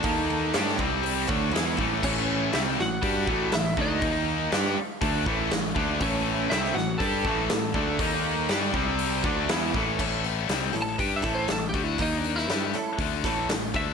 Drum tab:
CC |----------------|x---------------|----------------|----------------|
HH |o---o---o---o---|----o---o---o---|o---o---o---o---|o---o---o---o---|
SD |----oo------o---|----o-o-----o---|----o-------o---|----ooo-----o---|
BD |o-----o---o---o-|o-------o-o---o-|o-------o-o---o-|o-------o-o---o-|

CC |----------------|x---------------|----------------|
HH |o---o---o---o---|--o-o-o-o-o-o-o-|o-o-o-o-o-o-o-o-|
SD |----o-------o---|----o-------o---|---oo-------o---|
BD |o-----o---o---o-|o-------o-o---o-|o-------o-o---o-|